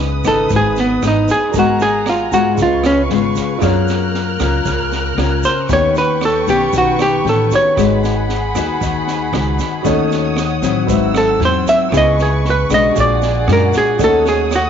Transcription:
Already playing: C#2 C#3 G#4 B4 D#5 D#6
0.24 G#1 E3 B3 D#4 A4, kick, cross-stick, snare, shaker
0.50 G#1 G#2, kick, snare, shaker
0.56 G#4
0.76 B3, snare, shaker
1.02 G#1 E3 B3 D#4, cross-stick, snare, shaker
1.07 D#4
1.28 G#4, kick, snare, shaker
1.50 G#1 F#4 A#4 F#5 G#5 A#5, shaker
1.54 G#3 B3 F#4 A#4 D#5, kick, snare
1.59 F#4
1.80 G#4, snare, shaker
2.06 F4, cross-stick, snare
2.32 G#2 G#3 B3 F4 F#4, kick, snare, shaker
2.55 C#2 F4 G#4 B4 F5 C#6, kick, snare, shaker
2.59 C#3 F4 D#5
2.83 C#4, cross-stick, snare, shaker
3.09 G#1 G#3 B3 F4, snare
3.36 kick, snare, shaker
3.58 F#2 F#3 A#3 C#4 F4 G#4 A#4 F6 F#6, kick, cross-stick, snare, shaker
3.63 A#4 C#5
3.88 snare, shaker
4.14 snare
4.39 C#2 A#3 C#4 F4, kick, cross-stick, snare, shaker
4.65 C#2 C#3, kick, snare, shaker
4.92 snare, shaker
5.17 C#2 A#3 C#4 F4, cross-stick, snare
5.43 C5, kick, snare, shaker
5.69 D#2 D#3 B3 C#4 G4 B4 G5 C#6, kick, snare, shaker
5.73 C#5
5.95 B4, snare, shaker
6.21 cross-stick, snare
6.25 A4
6.47 B1 B3 C#4 G4, kick, snare, shaker
6.73 B1 D#3, kick, snare, shaker
6.78 F#4
6.99 G4, cross-stick, snare, shaker
7.25 A1 B3 C#4 G4, snare
7.29 A4
7.51 F#4 G4 B4 C#5, kick, snare, shaker
7.55 C#5
7.75 G#1 G#3 D#4 F#4 G#4 B4 F#5 B5, kick, cross-stick, snare, shaker
7.79 B4 D#5
8.04 snare, shaker
8.29 snare
8.55 D#2 D#4 F#4 B4, kick, cross-stick, snare, shaker
8.81 D#2 D#3, kick, snare, shaker
9.07 snare, shaker
9.32 C#2 D#4 F#4 B4, cross-stick, snare
9.59 kick, snare, shaker
9.82 D#2 D#3 A3 C#4 F#4 A4 C#5 F#5 D#6, kick, snare, shaker
9.88 D#5
10.11 snare, shaker
10.36 cross-stick, snare, shaker
10.62 A1 F#3 C4 E4, kick, snare, shaker
10.85 G#1 G#2 C4 F#4 B4 E6, kick, snare
10.89 C5 E5, shaker
11.14 A4, cross-stick, snare, shaker
11.40 E2 F#3 C4 E4, snare
11.45 C5
11.66 E5, kick, snare, shaker
11.90 C#2 C#3 B3 E4 G#4 B4 C#6, kick, cross-stick, snare, shaker
11.96 D#5
12.19 G#4, snare, shaker
12.45 snare
12.50 B4
12.70 B1 G#3 D4 F#4, kick, cross-stick, snare, shaker
12.74 D#5
12.92 A#1 F#4 G#4 D5 F#5, kick, snare, shaker
12.97 A#2 D5 C#6
13.22 snare, shaker
13.48 F#2 G#3 D4 F#4, cross-stick, snare
13.53 A#4
13.73 kick, snare, shaker
13.78 G#4
13.96 D#2 D#3 A3 F#4 A4 C#5 D#6, kick, snare, shaker
14.00 C#4 F#4 D#5
14.04 A4
14.25 G#4, snare, shaker
14.51 cross-stick, snare, shaker
14.56 F#4

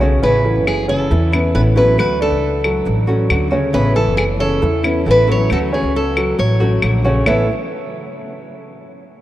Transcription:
Already playing: B1
0.00 C#3 A3 C#4 F#4 C#5
0.22 A1 C#3 E3 B3 C#4 E4 B4 C#5
0.44 E3 E4 A4
0.56 F#1
0.67 G#4, claves
0.88 C#3 C#4 A4 C#5
1.10 E2 E3 E4 A4, muted nylon-string guitar stroke
1.32 B3 C#4 E4, claves
1.54 A1 E3 B3 C#4 E4 A4 B4
1.76 F#3 B3 C#4 E4 F#4 A4 B4
1.98 D2 A3 F#4 B4, claves
2.20 D4 A4 D5
2.31 C#2
2.64 F#3 F#4 A4, claves
2.85 A1, muted nylon-string guitar stroke
3.07 F#3 A3 C#4 F#4 A4
3.29 D2 D3 A3 C#4 F#4, claves
3.51 C#3 A3 C#4 F#4 C#5
3.73 A1 C#3 E3 B3 C#4 E4 B4 C#5
3.96 E3 E4 A4
4.07 F#1
4.17 G#4, claves
4.40 C#3 C#4 A4 C#5
4.62 E2 E3 E4 A4, muted nylon-string guitar stroke
4.83 B3 C#4 E4, claves
5.05 A1 E3 B3 C#4 E4 A4
5.11 B4
5.27 F#3 B3 C#4 E4 F#4 A4
5.32 C#5
5.50 D2 A3 C#4 F#4 A4, claves
5.73 C#4 G#4 C#5
5.83 C#2
5.96 A4
6.16 F#3 F#4 A4, claves
6.38 A1 C#5, muted nylon-string guitar stroke
6.60 F#3 A3 C#4 F#4 A4
6.82 A#1 D3 A3 C#4 F#4, claves
7.04 C#3 A3 C#4 F#4 C#5
7.26 A1 A2 E3 A3 B3 C#4 E4 A4 B4 C#5 E5, claves

